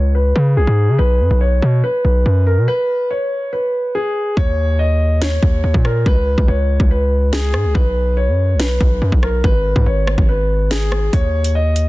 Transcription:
0.00 0.33 C#2 loud
0.00 0.12 C#5 medium
0.15 0.54 B4 medium
0.36 0.58 C#3 loud
0.57 0.67 B1 loud
0.57 0.97 G#4 medium
0.67 0.90 G#2 loud
0.88 0.98 C#3 loud
0.98 1.22 B1 loud
0.98 1.38 B4 loud
1.20 1.30 F#2 loud
1.31 1.61 B1 loud
1.41 1.81 C#5 medium
1.62 1.83 B2 loud
1.84 2.43 B4 medium
2.05 2.25 B1 loud
2.26 2.59 F#2 loud
2.47 2.66 A#4 medium
2.57 2.67 B2 loud
2.68 3.08 B4 loud
3.11 3.50 C#5 medium
3.53 3.92 B4 medium
3.95 4.35 G#4 medium
4.37 5.39 D#2 loud
4.37 4.77 C#5 loud
4.37 kick loud
4.79 5.19 D#5 medium
5.22 5.81 C#5 medium
5.22 snare loud
5.43 5.63 D#2 loud
5.43 kick medium
5.64 5.74 D#2 loud
5.74 6.05 A#2 loud
5.74 kick loud
5.85 6.04 A#4 medium
5.85 cross-stick medium
6.06 6.36 C#2 loud
6.06 6.46 B4 loud
6.06 kick loud
6.38 6.48 C#2 loud
6.38 kick medium
6.48 6.79 C#2 loud
6.48 6.88 C#5 medium
6.80 7.55 C#2 loud
6.80 kick medium
6.91 7.30 B4 medium
7.33 7.73 G#4 medium
7.33 snare loud
7.54 7.66 G#2 loud
7.54 cross-stick medium
7.64 7.75 C#2 loud
7.75 8.29 B1 loud
7.75 8.14 B4 loud
7.75 kick loud
8.17 8.57 C#5 medium
8.28 8.56 F#2 loud
8.54 8.79 B1 loud
8.60 9.19 B4 medium
8.60 snare loud
8.81 9.01 B1 loud
8.81 kick medium
9.02 9.12 F#2 loud
9.12 9.43 B1 loud
9.12 kick loud
9.23 9.42 A#4 medium
9.23 cross-stick medium
9.44 9.74 G#1 loud
9.44 9.84 B4 loud
9.44 kick loud
9.76 9.86 G#2 loud
9.76 kick medium
9.86 10.17 G#1 loud
9.86 10.26 C#5 medium
10.07 cross-stick loud
10.18 11.09 G#1 loud
10.18 kick loud
10.29 10.68 B4 medium
10.71 11.11 G#4 medium
10.71 snare loud
10.92 cross-stick medium
11.13 11.89 D#2 loud
11.13 11.53 C#5 loud
11.13 kick loud
11.13 closed hi-hat medium
11.44 closed hi-hat medium
11.55 11.89 D#5 medium
11.76 closed hi-hat medium

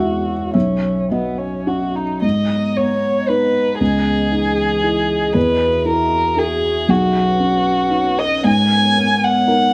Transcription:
0.00 0.50 E2 soft
0.00 0.31 G#3 soft
0.00 0.50 E4 soft
0.00 0.50 F#4 soft
0.00 0.53 F#4 soft
0.00 0.57 B4 soft
0.00 0.57 C#5 medium
0.00 0.50 E5 medium
0.54 2.19 B1 soft
0.54 1.05 C#4 soft
0.54 1.07 E5 medium
1.11 2.01 F#3 soft
1.11 1.39 B3 soft
1.11 1.91 D#5 soft
1.38 1.69 C#4 soft
1.67 2.19 C#4 soft
1.67 2.19 F#4 soft
1.67 1.97 F#4 soft
1.95 2.22 D#4 soft
2.22 3.75 G#2 soft
2.22 3.76 B3 medium
2.22 5.31 D#5 soft
2.22 2.78 D#5 medium
2.22 3.76 A#5 soft
2.77 3.60 B3 soft
2.77 3.30 C#5 medium
3.29 3.76 D#4 soft
3.29 3.78 B4 medium
3.29 3.76 B4 soft
3.79 5.32 C#2 soft
3.79 5.36 E3 medium
3.79 5.32 G#4 medium
3.79 6.90 G#4 soft
4.32 5.15 D#4 soft
4.83 5.31 E4 soft
4.83 5.31 G#4 soft
5.35 6.85 E2 soft
5.35 6.90 F#4 soft
5.35 5.86 B4 medium
5.35 6.90 E5 medium
5.85 6.68 E4 soft
5.85 6.41 A#4 medium
6.37 6.85 F#4 soft
6.37 6.85 G#4 soft
6.37 6.91 G#4 medium
6.88 8.41 B1 soft
6.88 8.45 C#4 medium
6.88 8.20 F#4 medium
6.88 8.45 B4 medium
6.88 9.73 C#5 medium
7.39 8.24 C#4 soft
7.90 8.41 D#4 soft
7.90 8.41 B4 soft
8.19 8.45 D#5 medium
8.44 9.73 G#2 medium
8.44 9.73 B3 medium
8.44 9.73 A#4 medium
8.44 9.25 G#5 medium
8.97 9.73 B3 soft
9.24 9.73 F#5 medium
9.47 9.73 D#4 soft
9.47 9.73 A#4 soft

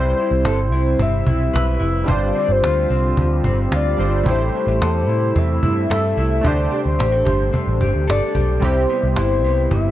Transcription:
0.00 0.12 C2 loud
0.00 2.06 C3 medium
0.00 2.07 C3 medium
0.00 0.49 G3 medium
0.00 2.03 G3 medium
0.00 9.91 G3 medium
0.00 2.04 C4 medium
0.00 2.06 C4 medium
0.00 2.05 E4 medium
0.00 2.06 E4 medium
0.00 6.40 G4 medium
0.00 0.19 B4 medium
0.00 1.03 C5 loud
0.00 2.06 C5 medium
0.00 0.46 E5 medium
0.17 0.71 E4 medium
0.17 cajon slap soft
0.31 0.42 C2 loud
0.45 0.72 G1 medium
0.45 0.58 A4 medium
0.45 cajon slap loud
0.72 0.94 C2 medium
0.72 1.26 E4 medium
0.72 cajon slap soft
0.99 1.21 G1 medium
0.99 2.35 C4 medium
0.99 2.12 E5 loud
0.99 cajon bass medium
1.27 1.48 B1 medium
1.27 1.78 E4 medium
1.27 cajon bass medium
1.54 1.76 B1 medium
1.54 2.14 B4 medium
1.54 cajon slap loud
1.80 2.03 F1 loud
1.80 2.13 E4 medium
1.80 cajon slap soft
2.04 4.26 G2 medium
2.04 4.24 D3 medium
2.04 3.93 G3 medium
2.04 3.94 D4 medium
2.04 3.95 F4 medium
2.08 2.30 G1 loud
2.08 4.24 C4 medium
2.08 4.24 F4 medium
2.08 3.96 C5 medium
2.08 2.37 D5 loud
2.08 cajon bass loud
2.35 2.90 C4 medium
2.35 2.53 D5 medium
2.35 cajon slap soft
2.49 2.60 G1 medium
2.49 3.60 C5 loud
2.63 2.85 D2 medium
2.63 3.71 F4 medium
2.63 cajon slap loud
2.90 3.12 C2 medium
2.90 3.44 C4 medium
2.90 cajon slap soft
3.17 3.39 D2 loud
3.17 4.32 F3 medium
3.17 cajon bass medium
3.44 3.66 G1 medium
3.44 3.99 C4 medium
3.44 cajon bass medium
3.72 3.94 D2 medium
3.72 4.32 F4 medium
3.72 4.24 D5 loud
3.72 cajon slap loud
3.97 4.21 G1 medium
3.97 4.25 G3 medium
3.97 4.57 C4 medium
3.97 4.26 D4 soft
3.97 4.26 F4 soft
3.97 4.27 C5 medium
3.97 cajon slap soft
4.23 4.48 A1 loud
4.23 6.44 A2 medium
4.23 8.58 C3 medium
4.23 6.39 A3 medium
4.23 8.59 A3 medium
4.23 6.40 E4 medium
4.23 6.43 E4 medium
4.23 6.41 G4 medium
4.23 cajon bass loud
4.28 6.42 C5 medium
4.28 5.40 C5 loud
4.54 4.68 D4 medium
4.54 cajon slap soft
4.67 4.78 A1 loud
4.67 5.08 E4 medium
4.81 5.08 E2 medium
4.81 5.90 A4 medium
4.81 cajon slap loud
5.08 5.30 A2 medium
5.08 5.62 E4 medium
5.08 cajon slap soft
5.35 5.58 E2 medium
5.35 7.52 C4 medium
5.35 6.49 E5 loud
5.35 cajon bass medium
5.63 5.85 G2 medium
5.63 6.16 E4 medium
5.63 cajon bass medium
5.90 6.12 G2 medium
5.90 6.74 A4 medium
5.90 cajon slap loud
6.17 6.39 C2 medium
6.17 6.50 E4 medium
6.17 cajon slap soft
6.41 6.66 D2 loud
6.41 8.62 D3 medium
6.41 8.57 A3 medium
6.41 8.58 D4 medium
6.41 8.60 D4 medium
6.41 9.91 G4 loud
6.41 8.59 G4 medium
6.41 cajon bass loud
6.46 8.60 C5 medium
6.46 6.73 D5 loud
6.71 6.99 G4 medium
6.71 6.80 D5 medium
6.71 cajon slap soft
6.86 6.97 D2 medium
6.86 7.92 C5 medium
6.99 7.21 A1 medium
6.99 7.12 G4 medium
6.99 cajon slap loud
7.12 8.06 A4 medium
7.25 7.49 G1 medium
7.25 7.81 G4 medium
7.25 cajon bass loud
7.25 cajon slap soft
7.53 8.89 C4 medium
7.53 cajon bass medium
7.67 7.78 A1 medium
7.81 7.92 G1 medium
7.81 8.34 G4 medium
7.81 cajon bass medium
7.95 8.06 D2 medium
8.07 8.20 G1 medium
8.07 8.68 A4 medium
8.07 8.55 D5 loud
8.07 cajon slap loud
8.35 8.57 B1 medium
8.35 9.18 G4 medium
8.35 cajon bass medium
8.55 8.66 D5 medium
8.60 8.84 C2 medium
8.60 9.91 C3 medium
8.60 9.91 G3 medium
8.60 9.91 C4 medium
8.60 9.91 E4 medium
8.60 cajon bass loud
8.64 9.91 G4 medium
8.64 9.75 C5 loud
8.89 9.43 B3 medium
8.89 cajon slap soft
9.04 9.15 C2 loud
9.16 9.43 G1 medium
9.16 9.91 E4 medium
9.16 cajon slap loud
9.43 9.66 C2 medium
9.43 9.91 B3 medium
9.43 cajon slap soft
9.71 9.91 G1 medium
9.71 9.91 G3 medium
9.71 9.91 E5 loud
9.71 cajon bass medium

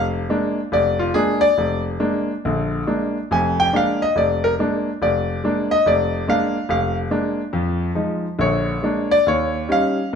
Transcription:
0.00 0.23 F1 medium
0.29 0.59 G#3 medium
0.29 0.59 A#3 soft
0.29 0.59 D4 medium
0.72 1.09 F1 medium
0.72 0.99 D5 medium
0.99 1.14 F4 medium
1.14 1.44 G#3 medium
1.14 1.44 A#3 medium
1.14 1.44 D4 medium
1.14 1.41 G#4 loud
1.41 1.82 D5 loud
1.58 1.95 F1 medium
2.00 2.30 G#3 medium
2.00 2.30 A#3 medium
2.00 2.31 D4 medium
2.45 2.82 A#1 medium
2.45 2.82 D3 medium
2.87 3.17 G#3 soft
2.87 3.17 A#3 soft
2.87 3.17 D4 medium
3.31 3.68 F1 medium
3.31 3.68 F2 medium
3.31 3.59 G#5 medium
3.60 3.74 G5 loud
3.73 4.03 G#3 soft
3.73 4.03 A#3 soft
3.73 4.03 D4 medium
3.73 4.02 F5 medium
4.02 4.16 D#5 medium
4.16 4.53 F1 medium
4.16 4.44 D5 medium
4.44 4.53 A#4 medium
4.59 4.88 G#3 medium
4.59 4.89 A#3 soft
4.59 4.89 D4 medium
5.02 5.38 F1 medium
5.02 5.68 D5 medium
5.44 5.73 G#3 medium
5.44 5.73 A#3 soft
5.44 5.73 D4 medium
5.71 5.85 D#5 loud
5.86 6.22 F1 medium
5.86 6.26 D5 medium
6.27 6.56 G#3 medium
6.27 6.57 A#3 medium
6.27 6.57 D4 medium
6.27 6.68 F5 medium
6.69 7.06 F1 medium
6.69 6.97 F5 medium
7.11 7.40 G#3 medium
7.11 7.40 A#3 soft
7.11 7.41 D4 medium
7.53 7.90 F2 medium
7.53 7.90 F3 medium
7.95 8.25 F3 soft
7.95 8.25 G#3 soft
7.95 8.26 D#4 medium
8.39 8.77 A#1 medium
8.39 8.76 D3 medium
8.39 9.08 C#5 medium
8.83 9.13 G#3 soft
8.83 9.13 A#3 soft
8.83 9.13 D4 medium
9.11 9.26 D5 loud
9.26 9.64 D#2 medium
9.26 9.67 C#5 medium
9.69 9.99 G3 medium
9.69 9.99 C#4 soft
9.69 9.99 D#4 medium
9.69 10.11 F5 medium

